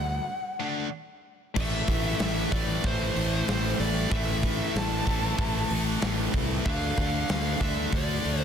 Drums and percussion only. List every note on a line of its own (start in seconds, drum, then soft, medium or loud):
1.56 kick loud
1.56 crash loud
1.88 kick medium
1.88 open hi-hat medium
2.19 snare loud
2.19 open hi-hat medium
2.52 kick medium
2.52 open hi-hat medium
2.84 kick loud
2.84 open hi-hat medium
3.16 open hi-hat medium
3.48 snare loud
3.48 open hi-hat medium
3.80 open hi-hat medium
4.11 kick loud
4.11 open hi-hat medium
4.43 kick medium
4.43 open hi-hat medium
4.76 snare loud
4.76 open hi-hat loud
5.07 kick medium
5.07 open hi-hat medium
5.39 kick loud
5.39 open hi-hat medium
5.70 open hi-hat medium
6.02 snare loud
6.02 open hi-hat medium
6.33 kick medium
6.33 open hi-hat medium
6.65 kick loud
6.65 open hi-hat medium
6.97 kick medium
6.97 open hi-hat medium
7.29 snare loud
7.29 open hi-hat medium
7.61 kick medium
7.61 open hi-hat medium
7.93 kick loud
7.93 open hi-hat medium
8.24 open hi-hat medium